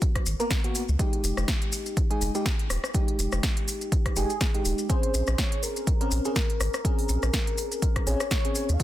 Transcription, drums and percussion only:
0.01 kick loud
0.01 closed hi-hat medium
0.01 maracas soft
0.15 kick medium
0.15 cross-stick medium
0.15 closed hi-hat soft
0.26 open hi-hat loud
0.26 maracas loud
0.40 closed hi-hat soft
0.40 maracas medium
0.50 kick loud
0.50 snare loud
0.50 closed hi-hat medium
0.50 maracas soft
0.64 closed hi-hat soft
0.75 open hi-hat loud
0.75 maracas medium
0.89 maracas soft
0.99 kick loud
0.99 closed hi-hat medium
0.99 maracas soft
1.13 closed hi-hat soft
1.24 open hi-hat loud
1.24 maracas medium
1.37 cross-stick medium
1.37 maracas medium
1.48 kick loud
1.48 snare loud
1.48 closed hi-hat medium
1.48 maracas soft
1.62 closed hi-hat soft
1.72 open hi-hat loud
1.72 maracas medium
1.86 closed hi-hat soft
1.86 maracas soft
1.97 kick loud
1.97 closed hi-hat medium
1.97 maracas soft
2.11 closed hi-hat soft
2.21 open hi-hat loud
2.21 maracas medium
2.35 closed hi-hat soft
2.35 maracas soft
2.46 kick loud
2.46 snare loud
2.46 closed hi-hat medium
2.46 maracas soft
2.59 closed hi-hat soft
2.70 cross-stick medium
2.70 open hi-hat loud
2.70 maracas medium
2.84 cross-stick medium
2.84 maracas medium
2.94 kick loud
2.94 closed hi-hat medium
2.94 maracas soft
3.08 closed hi-hat soft
3.19 open hi-hat loud
3.19 maracas medium
3.32 cross-stick medium
3.32 maracas medium
3.43 kick loud
3.43 snare loud
3.43 closed hi-hat medium
3.43 maracas soft
3.57 closed hi-hat medium
3.68 open hi-hat loud
3.68 maracas medium
3.81 closed hi-hat soft
3.81 maracas soft
3.92 kick loud
3.92 closed hi-hat medium
3.92 maracas soft
4.06 kick medium
4.06 cross-stick medium
4.06 closed hi-hat soft
4.16 open hi-hat loud
4.16 maracas medium
4.30 closed hi-hat soft
4.30 maracas medium
4.41 kick loud
4.41 snare loud
4.41 closed hi-hat medium
4.41 maracas soft
4.54 closed hi-hat soft
4.65 open hi-hat loud
4.65 maracas medium
4.78 maracas medium
4.89 kick loud
4.89 closed hi-hat medium
4.89 maracas soft
5.03 closed hi-hat medium
5.14 open hi-hat loud
5.14 maracas medium
5.27 cross-stick medium
5.27 maracas soft
5.38 kick loud
5.38 snare loud
5.38 closed hi-hat medium
5.38 maracas soft
5.52 closed hi-hat medium
5.63 open hi-hat loud
5.63 maracas medium
5.76 closed hi-hat soft
5.76 maracas medium
5.87 kick loud
5.87 closed hi-hat medium
5.87 maracas soft
6.01 closed hi-hat medium
6.11 open hi-hat loud
6.11 maracas medium
6.25 closed hi-hat soft
6.25 maracas soft
6.35 kick loud
6.35 snare loud
6.35 closed hi-hat medium
6.35 maracas soft
6.50 closed hi-hat medium
6.61 cross-stick medium
6.61 open hi-hat loud
6.61 maracas medium
6.74 cross-stick medium
6.74 maracas soft
6.85 kick loud
6.85 closed hi-hat medium
6.85 maracas soft
6.99 open hi-hat medium
7.09 open hi-hat loud
7.09 maracas medium
7.22 cross-stick medium
7.22 maracas medium
7.33 kick loud
7.33 snare loud
7.33 closed hi-hat medium
7.33 maracas soft
7.47 closed hi-hat medium
7.58 open hi-hat loud
7.58 maracas medium
7.72 closed hi-hat soft
7.72 maracas medium
7.82 kick loud
7.82 closed hi-hat medium
7.82 maracas soft
7.96 kick medium
7.96 cross-stick medium
7.96 closed hi-hat medium
8.07 open hi-hat loud
8.07 maracas medium
8.20 cross-stick medium
8.20 closed hi-hat soft
8.20 maracas medium
8.31 kick loud
8.31 snare loud
8.31 closed hi-hat medium
8.31 maracas soft
8.45 closed hi-hat medium
8.55 open hi-hat loud
8.55 maracas medium
8.69 closed hi-hat soft
8.69 maracas medium
8.80 kick loud
8.80 closed hi-hat medium
8.80 maracas soft

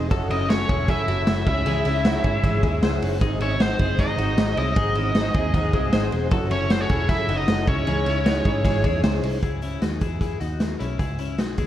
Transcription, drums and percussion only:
0.11 kick loud
0.11 ride medium
0.30 ride medium
0.50 snare loud
0.50 ride medium
0.69 kick loud
0.69 ride medium
0.88 kick loud
0.88 snare soft
0.88 ride medium
1.08 ride medium
1.27 snare loud
1.27 ride medium
1.47 kick loud
1.47 crash medium
1.66 ride medium
1.85 ride medium
2.05 snare loud
2.05 ride medium
2.24 kick medium
2.24 ride medium
2.44 kick medium
2.44 ride medium
2.63 kick medium
2.63 ride medium
2.83 snare loud
2.83 ride medium
3.02 open hi-hat medium
3.02 ride medium
3.21 kick loud
3.21 hi-hat pedal medium
3.21 ride medium
3.40 ride medium
3.60 snare loud
3.60 ride medium
3.79 kick medium
3.79 ride medium
3.99 kick medium
3.99 snare soft
3.99 ride medium
4.18 ride medium
4.38 snare loud
4.38 ride medium
4.57 ride medium
4.76 kick loud
4.76 ride medium
4.95 ride medium
5.15 snare loud
5.15 ride medium
5.34 kick loud
5.34 ride medium
5.54 kick medium
5.54 ride medium
5.73 kick loud
5.73 ride medium
5.93 snare loud
5.93 ride medium
6.12 ride medium
6.31 kick loud
6.31 ride medium
6.51 ride medium
6.70 snare loud
6.70 ride medium
6.89 kick medium
6.89 ride medium
7.09 kick medium
7.09 snare soft
7.09 ride medium
7.29 ride medium
7.48 snare loud
7.48 ride medium
7.67 kick loud
7.67 ride medium
7.87 ride medium
8.06 ride medium
8.26 snare loud
8.26 ride medium
8.45 kick loud
8.45 ride medium
8.65 kick medium
8.65 snare soft
8.65 ride medium
8.84 kick medium
8.84 ride medium
9.04 snare loud
9.04 ride medium
9.23 open hi-hat medium
9.23 ride medium
9.43 kick medium
9.43 closed hi-hat medium
9.62 closed hi-hat medium
9.82 snare medium
9.82 closed hi-hat medium
10.01 kick medium
10.01 closed hi-hat medium
10.21 kick medium
10.21 snare soft
10.21 closed hi-hat medium
10.41 closed hi-hat medium
10.60 snare loud
10.60 closed hi-hat medium
10.80 closed hi-hat medium
10.99 kick loud
10.99 closed hi-hat medium
11.19 closed hi-hat medium
11.38 snare medium
11.38 closed hi-hat medium
11.58 kick medium
11.58 closed hi-hat medium

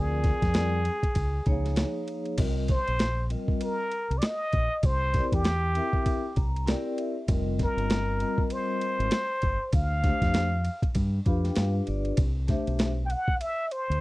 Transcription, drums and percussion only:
0.24 kick medium
0.24 snare soft
0.24 ride medium
0.42 kick medium
0.42 snare soft
0.42 ride soft
0.54 snare loud
0.54 hi-hat pedal medium
0.54 ride medium
0.85 ride medium
1.03 kick medium
1.03 ride soft
1.15 kick medium
1.15 ride medium
1.46 kick medium
1.46 ride soft
1.65 snare soft
1.65 ride soft
1.76 snare loud
1.76 hi-hat pedal medium
1.76 ride medium
2.08 ride medium
2.25 ride soft
2.38 kick loud
2.38 crash loud
2.38 ride medium
2.68 kick medium
2.68 snare soft
2.68 ride medium
2.88 ride soft
2.99 snare loud
2.99 hi-hat pedal medium
2.99 ride medium
3.30 ride medium
3.48 kick medium
3.61 ride medium
3.92 ride soft
4.11 ride soft
4.22 snare loud
4.22 hi-hat pedal medium
4.22 ride medium
4.53 kick medium
4.53 ride medium
4.83 kick loud
4.83 ride medium
5.14 kick medium
5.14 snare soft
5.14 ride medium
5.32 kick medium
5.32 ride medium
5.44 snare loud
5.44 hi-hat pedal medium
5.44 ride medium
5.75 ride medium
5.93 kick medium
6.06 kick medium
6.06 ride medium
6.36 kick medium
6.36 ride soft
6.56 ride soft
6.67 snare loud
6.67 hi-hat pedal medium
6.67 ride medium
6.98 ride medium
7.28 kick loud
7.28 ride medium
7.59 kick medium
7.59 snare soft
7.59 ride medium
7.78 ride soft
7.90 snare loud
7.90 hi-hat pedal soft
7.90 ride medium
8.20 ride medium
8.38 kick medium
8.50 ride medium
8.81 ride medium
9.00 ride soft
9.11 snare loud
9.11 hi-hat pedal medium
9.11 ride medium
9.42 kick medium
9.42 ride medium
9.73 kick loud
9.73 ride medium
10.04 kick medium
10.04 snare soft
10.04 ride medium
10.22 kick medium
10.22 snare soft
10.22 ride soft
10.34 snare loud
10.34 hi-hat pedal medium
10.34 ride medium
10.65 ride medium
10.82 kick medium
10.82 ride soft
10.95 kick medium
10.95 ride medium
11.26 kick medium
11.26 ride soft
11.45 snare soft
11.45 ride soft
11.56 snare loud
11.56 hi-hat pedal medium
11.56 ride medium
11.87 ride soft
12.05 ride soft
12.17 kick loud
12.17 ride medium
12.48 kick medium
12.48 snare soft
12.48 ride medium
12.67 ride soft
12.79 snare loud
12.79 hi-hat pedal medium
12.79 ride medium
13.10 ride medium
13.28 kick medium
13.41 ride medium
13.71 ride soft
13.91 ride soft

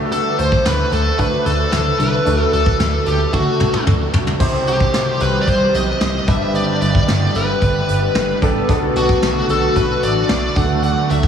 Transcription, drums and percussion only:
0.12 closed hi-hat medium
0.39 closed hi-hat medium
0.52 kick medium
0.65 snare medium
0.65 closed hi-hat medium
0.92 closed hi-hat medium
1.19 kick medium
1.19 closed hi-hat medium
1.46 closed hi-hat medium
1.72 snare loud
1.72 closed hi-hat medium
1.99 closed hi-hat medium
2.26 closed hi-hat medium
2.53 closed hi-hat medium
2.66 kick loud
2.80 snare medium
2.80 closed hi-hat medium
3.06 closed hi-hat medium
3.33 kick medium
3.33 high tom soft
3.60 mid tom medium
3.73 mid tom medium
3.87 mid tom medium
4.14 floor tom medium
4.27 floor tom medium
4.40 kick loud
4.40 crash medium
4.67 closed hi-hat medium
4.80 kick loud
4.94 snare medium
4.94 closed hi-hat medium
5.20 closed hi-hat medium
5.47 kick medium
5.47 closed hi-hat medium
5.74 closed hi-hat medium
6.01 snare loud
6.01 closed hi-hat medium
6.28 kick loud
6.28 closed hi-hat medium
6.55 closed hi-hat medium
6.81 closed hi-hat medium
6.95 kick loud
7.08 snare loud
7.08 closed hi-hat medium
7.35 closed hi-hat medium
7.62 kick medium
7.62 closed hi-hat medium
7.88 closed hi-hat medium
8.15 snare loud
8.15 closed hi-hat medium
8.42 kick medium
8.42 closed hi-hat medium
8.69 kick loud
8.69 closed hi-hat medium
8.96 closed hi-hat medium
9.09 kick loud
9.22 snare loud
9.22 closed hi-hat medium
9.49 closed hi-hat medium
9.76 kick medium
9.76 closed hi-hat medium
10.03 closed hi-hat medium
10.29 snare loud
10.29 closed hi-hat medium
10.56 kick loud
10.56 closed hi-hat medium
10.83 closed hi-hat medium
11.10 closed hi-hat medium
11.23 kick loud

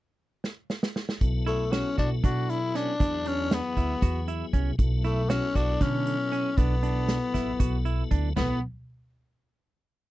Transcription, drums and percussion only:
0.44 snare medium
0.70 snare medium
0.83 snare medium
0.96 snare medium
1.09 snare medium
1.21 kick medium
1.21 closed hi-hat medium
1.47 closed hi-hat soft
1.73 snare medium
1.73 closed hi-hat medium
1.98 kick medium
1.98 closed hi-hat soft
2.24 kick medium
2.24 closed hi-hat medium
2.50 closed hi-hat medium
2.75 snare soft
2.75 closed hi-hat medium
3.00 kick medium
3.00 closed hi-hat medium
3.26 closed hi-hat soft
3.51 snare medium
3.51 closed hi-hat medium
3.77 kick medium
3.77 closed hi-hat soft
4.02 kick medium
4.02 closed hi-hat medium
4.28 closed hi-hat soft
4.53 kick medium
4.53 closed hi-hat soft
4.79 kick medium
4.79 closed hi-hat medium
5.04 closed hi-hat soft
5.30 snare medium
5.30 closed hi-hat medium
5.55 kick medium
5.55 snare soft
5.55 closed hi-hat medium
5.81 kick medium
5.81 snare soft
5.81 closed hi-hat medium
6.06 closed hi-hat medium
6.32 closed hi-hat medium
6.58 kick medium
6.58 closed hi-hat medium
6.83 closed hi-hat medium
7.08 snare medium
7.08 closed hi-hat medium
7.34 kick medium
7.34 snare soft
7.34 closed hi-hat soft
7.60 kick medium
7.60 closed hi-hat medium
7.86 closed hi-hat medium
8.11 kick medium
8.11 closed hi-hat soft
8.37 snare medium
8.37 floor tom medium
8.37 crash medium

